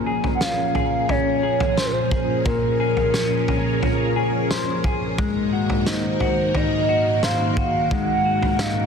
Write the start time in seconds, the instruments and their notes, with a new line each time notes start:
Already playing: clean electric guitar A#2 C5, string machine A#2 F3 C#4 G#4 A#4
0.06 clean electric guitar G#4
0.24 floor tom
0.35 soft synth lead F#5
0.41 clean electric guitar C#4, soft synth lead F5, snare
0.75 clean electric guitar G#4, floor tom
1.09 clean electric guitar C#4, soft synth lead C#5, floor tom
1.43 clean electric guitar G#4
1.60 floor tom
1.77 clean electric guitar C5, soft synth lead C5, snare
1.86 soft synth lead A#4
1.92 soft synth lead C5
2.11 clean electric guitar G#4, kick
2.45 clean electric guitar A#2, soft synth lead A#4, kick, floor tom
2.80 clean electric guitar G#4
2.97 floor tom
3.14 clean electric guitar C#4, snare
3.48 clean electric guitar G#4, floor tom
3.82 clean electric guitar C#4, floor tom
4.16 clean electric guitar G#4
4.51 clean electric guitar C5, snare
4.84 clean electric guitar G#4, kick, floor tom
5.18 string machine G#2 D#3 A#3 F#4, clean electric guitar G#3, kick, floor tom
5.53 clean electric guitar F#4
5.70 floor tom
5.87 clean electric guitar D#4, soft synth lead C5, snare
6.20 clean electric guitar F#4, floor tom
6.55 clean electric guitar D#4, soft synth lead D#5, floor tom
6.89 clean electric guitar F#4
7.23 clean electric guitar C5, soft synth lead F5, snare
7.57 clean electric guitar F#4, kick, floor tom
7.91 clean electric guitar G#3, soft synth lead F#5, kick, floor tom
8.25 clean electric guitar F#4
8.43 floor tom
8.59 clean electric guitar D#4, soft synth lead F5, snare